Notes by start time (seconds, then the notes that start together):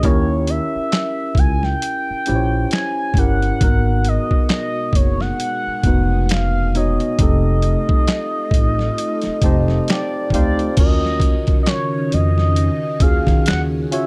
0.03 D#2 C#4 E4 G4 A#4 C#5, kick, closed hi-hat
0.47 E5, closed hi-hat
0.75 muted upright bass stroke
0.92 snare, clap, closed hi-hat
1.35 C#2 G#5, kick, closed hi-hat
1.63 G5, snare
1.82 closed hi-hat
2.10 muted upright bass stroke
2.26 A#1 C#4 E4 G4 C5, closed hi-hat
2.36 C#5
2.71 G#5, snare, clap, closed hi-hat
3.14 G1 C#4 E4, kick, closed hi-hat
3.18 G4 A#4 F#5
3.42 closed hi-hat
3.60 G#1 B2 G#3 A#3 D#4 F#4 A#4, kick, closed hi-hat
3.68 B3
4.05 D#5, closed hi-hat
4.31 muted upright bass stroke, kick
4.49 D#5, snare, clap, closed hi-hat
4.93 F#1 C#5, kick, closed hi-hat
5.20 F#5, snare
5.40 G#4, closed hi-hat
5.67 muted upright bass stroke
5.83 F1 B3 D#4 F#4, kick, closed hi-hat
5.88 B4
6.26 F#5, closed hi-hat
6.30 F5, snare, clap
6.75 B3 D#4 F#4 C#5 D#5, closed hi-hat
7.00 closed hi-hat
7.19 F1 A3 C4 D#4 F4 G4 A4, kick, closed hi-hat
7.62 closed hi-hat
7.89 muted upright bass stroke, kick
8.07 snare, clap, closed hi-hat
8.51 A1, kick, closed hi-hat
8.79 snare
8.98 closed hi-hat
9.22 snare, closed hi-hat
9.27 muted upright bass stroke
9.42 F1 C4 D#4 G4 A5, kick, closed hi-hat
9.46 C5
9.68 snare
9.88 D5 G5, snare, clap, closed hi-hat
10.30 D2 C4 D#4 D5 F5, kick, closed hi-hat
10.35 G4 C5
10.59 closed hi-hat
10.77 D#2 C#3 D#3 C#4 F4 F#4 A#4 D#5, kick, closed hi-hat, crash
11.05 snare
11.20 kick, closed hi-hat
11.47 muted upright bass stroke, kick, closed hi-hat
11.63 D#5, closed hi-hat
11.67 C#5, snare, clap
12.12 F2 D#5, closed hi-hat
12.38 snare
12.56 closed hi-hat
13.00 D#2 C#4 F4 F#4 G#4 F5, kick, closed hi-hat
13.27 D#3, kick, snare, closed hi-hat
13.46 D#2 F#5, snare, clap, closed hi-hat
13.91 C#4 F4 F#4 C#5 E5, closed hi-hat